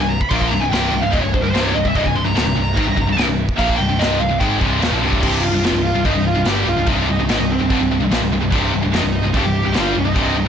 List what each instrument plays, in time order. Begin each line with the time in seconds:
0.01 picked electric bass C1, distorted electric guitar C2 G2, lead electric guitar G#5
0.09 lead electric guitar A#5
0.21 lead electric guitar B5, kick
0.29 picked electric bass A#1, distorted electric guitar A#2 F3 A#3, lead electric guitar C6, kick, crash
0.35 lead electric guitar C#6
0.42 lead electric guitar C6, kick
0.48 picked electric bass C1, distorted electric guitar C2, lead electric guitar A#5
0.52 distorted electric guitar G2
0.60 picked electric bass C1, distorted electric guitar C2 G2, lead electric guitar G#5
0.69 picked electric bass C1, distorted electric guitar C2, lead electric guitar G5
0.73 distorted electric guitar G2 C3, snare, crash
0.92 picked electric bass C1, distorted electric guitar C2 G2
1.02 picked electric bass C1, distorted electric guitar C2 G2, lead electric guitar F5
1.12 picked electric bass D#1, distorted electric guitar D#2 A#2, lead electric guitar D#5, kick, crash
1.20 distorted electric guitar C2, lead electric guitar C#5
1.24 picked electric bass C1, distorted electric guitar G2
1.33 picked electric bass C1, distorted electric guitar C2 G2, lead electric guitar C5, kick
1.42 picked electric bass C1, distorted electric guitar C2, lead electric guitar A#4
1.46 distorted electric guitar G2
1.50 picked electric bass C1, lead electric guitar C5
1.55 distorted electric guitar C2 G2 C3, snare, crash
1.64 lead electric guitar C#5
1.75 picked electric bass C1, distorted electric guitar C2 G2, lead electric guitar D#5
1.85 picked electric bass C1, distorted electric guitar C2 G2, lead electric guitar E5, kick
1.95 picked electric bass C1, distorted electric guitar C2 G2, lead electric guitar D#5, kick, crash
2.05 picked electric bass C1, distorted electric guitar C2 G2, lead electric guitar G#5, kick
2.15 picked electric bass C1, distorted electric guitar C2 G2, lead electric guitar C6
2.25 picked electric bass C1, distorted electric guitar C2 G2, lead electric guitar A#5
2.35 picked electric bass D1, distorted electric guitar D2 A2, snare, crash
2.46 picked electric bass C1, distorted electric guitar C2 G2
2.56 picked electric bass C1, distorted electric guitar C2 G2
2.77 picked electric bass G#1, distorted electric guitar G#2 D#3, kick, crash
2.87 picked electric bass C1, distorted electric guitar C2 G2
2.97 picked electric bass C1, distorted electric guitar C2 G2, kick
3.08 picked electric bass C1, distorted electric guitar C2 G2
3.17 picked electric bass C1, distorted electric guitar C2 G2, snare, crash
3.27 picked electric bass C1, distorted electric guitar C2 G2
3.49 kick
3.58 picked electric bass A#1, distorted electric guitar A#2 F3 A#3, lead electric guitar F5, kick, crash
3.69 kick
3.76 distorted electric guitar C2 G2, lead electric guitar G5
3.81 picked electric bass C1
3.89 picked electric bass C1, distorted electric guitar C2 G2
3.99 picked electric bass C1, distorted electric guitar C2 G2 C3, lead electric guitar D#5, snare, crash
4.19 picked electric bass C1, distorted electric guitar C2 G2, lead electric guitar F5
4.29 picked electric bass C1, distorted electric guitar C2 G2
4.39 picked electric bass G#1, distorted electric guitar G#2 D#3 G#3, lead electric guitar G5, kick, crash
4.60 picked electric bass C1, distorted electric guitar C2 G2 C3, kick
4.80 picked electric bass D#1, distorted electric guitar D#2 A#2, snare, crash
4.90 picked electric bass A#1, distorted electric guitar A#2 F3
4.94 distorted electric guitar F3
5.00 picked electric bass C1, distorted electric guitar C2 G2 C3
5.13 kick
5.21 picked electric bass C1, distorted electric guitar C2 G2 C3, lead electric guitar G4, kick, crash
5.40 picked electric bass C1, distorted electric guitar C2 G2, lead electric guitar F4
5.52 picked electric bass C1, distorted electric guitar C2 G2
5.62 picked electric bass F1, distorted electric guitar F2 C3, snare, crash
5.73 picked electric bass C1, distorted electric guitar C2 G2
5.85 lead electric guitar F4
5.95 picked electric bass C1, distorted electric guitar C2 G2
6.05 picked electric bass C1, distorted electric guitar C2 G2, lead electric guitar D#4, kick, crash
6.14 picked electric bass C1, distorted electric guitar C2 G2
6.27 lead electric guitar F4
6.35 picked electric bass C1, distorted electric guitar C2 G2
6.45 picked electric bass G1, distorted electric guitar G2 D3 G3, lead electric guitar G4, snare, crash
6.67 picked electric bass C1, distorted electric guitar C2 G2, lead electric guitar F4
6.77 picked electric bass C1, distorted electric guitar C2 G2
6.87 picked electric bass C1, distorted electric guitar C2 G2 C3, lead electric guitar D#4, kick, crash
7.08 picked electric bass C1, distorted electric guitar C2 G2, lead electric guitar D#4
7.19 picked electric bass C1, distorted electric guitar C2 G2
7.29 picked electric bass G#1, distorted electric guitar G#2 D#3, snare, crash
7.40 picked electric bass C1, distorted electric guitar C2 G2
7.50 lead electric guitar C4
7.60 picked electric bass C1, distorted electric guitar C2 G2
7.70 picked electric bass G1, distorted electric guitar G2 D3, kick, crash
7.80 picked electric bass C1, distorted electric guitar C2 G2
7.91 picked electric bass C1, distorted electric guitar C2 G2
8.00 picked electric bass C1, distorted electric guitar C2 G2
8.11 picked electric bass A#1, distorted electric guitar A#2 F3, snare, crash
8.22 picked electric bass C1, distorted electric guitar C2 G2
8.33 picked electric bass C1, distorted electric guitar C2 G2
8.42 picked electric bass C1, distorted electric guitar C2 G2
8.52 picked electric bass C1, distorted electric guitar C2 G2 C3, kick, crash
8.74 picked electric bass C1, distorted electric guitar C2 G2
8.82 picked electric bass C1, distorted electric guitar C2 G2
8.93 picked electric bass F1, distorted electric guitar F2 C3, lead electric guitar D#4, snare, crash
9.04 picked electric bass C1, distorted electric guitar C2 G2
9.24 picked electric bass C1, distorted electric guitar C2 G2
9.34 picked electric bass C1, distorted electric guitar C2 G2, lead electric guitar G4, kick, crash
9.45 picked electric bass C1, distorted electric guitar C2 G2
9.66 picked electric bass C1, distorted electric guitar C2 G2
9.74 picked electric bass G1, distorted electric guitar G2 D3 G3, snare, crash
9.80 lead electric guitar F4
9.96 picked electric bass C1, distorted electric guitar C2 G2, lead electric guitar D#4
10.05 picked electric bass C1, distorted electric guitar C2 G2
10.15 picked electric bass C1, distorted electric guitar C2 G2 C3, kick, crash
10.37 picked electric bass C1, distorted electric guitar C2 G2